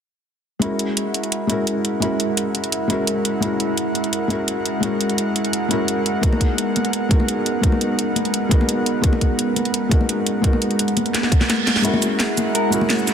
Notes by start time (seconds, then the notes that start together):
0.59 G#3 C#4 E4 F#4 A#4 F#5, closed hi-hat
0.64 A#4
0.79 closed hi-hat
0.97 closed hi-hat
1.14 closed hi-hat
1.24 closed hi-hat
1.32 closed hi-hat
1.47 G#3 C#4 E4 F#4, closed hi-hat
1.52 A#4
1.67 closed hi-hat
1.85 closed hi-hat
2.00 G#3 C#4 E4 F#4, closed hi-hat
2.04 A#4
2.20 closed hi-hat
2.37 closed hi-hat
2.55 closed hi-hat
2.64 closed hi-hat
2.72 closed hi-hat
2.88 G#3 C#4 E4 F#4, closed hi-hat
2.92 A#4
3.07 closed hi-hat
3.25 closed hi-hat
3.40 G#3 C#4 E4 F#4, closed hi-hat
3.45 A#4
3.60 closed hi-hat
3.77 closed hi-hat
3.95 closed hi-hat
4.04 closed hi-hat
4.13 closed hi-hat
4.28 G#3 C#4 E4 F#4, closed hi-hat
4.32 A#4
4.48 closed hi-hat
4.66 closed hi-hat
4.80 G#3 C#4 E4 F#4, closed hi-hat
4.85 A#4
5.01 closed hi-hat
5.10 closed hi-hat
5.18 closed hi-hat
5.36 closed hi-hat
5.45 closed hi-hat
5.53 closed hi-hat
5.68 G#3 C#4 E4 F#4, closed hi-hat
5.73 A#4
5.88 closed hi-hat
6.06 closed hi-hat
6.21 G#3 B3 D#4 F#4, kick, closed hi-hat
6.26 A#4
6.33 high conga
6.41 kick, closed hi-hat
6.58 closed hi-hat
6.76 closed hi-hat, high conga
6.85 closed hi-hat
6.93 closed hi-hat
7.09 G#3 B3 D#4 F#4, kick, closed hi-hat
7.13 A#4
7.20 high conga
7.28 closed hi-hat
7.46 closed hi-hat
7.61 G#3 B3 D#4 F#4, kick, closed hi-hat
7.66 A#4
7.72 high conga
7.81 closed hi-hat
7.99 closed hi-hat
8.16 closed hi-hat, high conga
8.25 closed hi-hat
8.34 closed hi-hat
8.49 G#3 B3 D#4 F#4, kick, closed hi-hat
8.54 A#4
8.61 high conga
8.69 closed hi-hat
8.86 closed hi-hat
9.02 G#3 B3 D#4 F#4, kick, closed hi-hat
9.06 A#4
9.13 high conga
9.21 kick, closed hi-hat
9.39 closed hi-hat
9.56 closed hi-hat, high conga
9.65 closed hi-hat
9.74 closed hi-hat
9.89 G#3 B3 D#4 F#4, kick, closed hi-hat
9.94 A#4
10.01 high conga
10.09 closed hi-hat
10.27 closed hi-hat
10.42 G#3 B3 D#4 F#4, kick, closed hi-hat
10.46 A#4
10.53 high conga
10.62 closed hi-hat
10.71 closed hi-hat
10.79 closed hi-hat
10.88 closed hi-hat
10.97 closed hi-hat, high conga
11.06 closed hi-hat
11.14 snare, closed hi-hat, reverse cymbal
11.23 snare
11.32 kick, closed hi-hat
11.41 snare, high conga
11.50 snare, closed hi-hat
11.67 snare, closed hi-hat
11.76 snare
11.82 G#3 C#4 E4 F#4 A#4 F#5, closed hi-hat, riser
11.87 A#4
11.93 high conga
12.02 closed hi-hat, shaker
12.20 G#4, snare, closed hi-hat, shaker
12.37 closed hi-hat, high conga, shaker
12.55 A#4, closed hi-hat
12.70 G#3 C#4 E4 F#4, closed hi-hat, shaker
12.75 A#4
12.81 high conga
12.90 C#5, snare, closed hi-hat
12.99 shaker
13.07 snare, closed hi-hat, shaker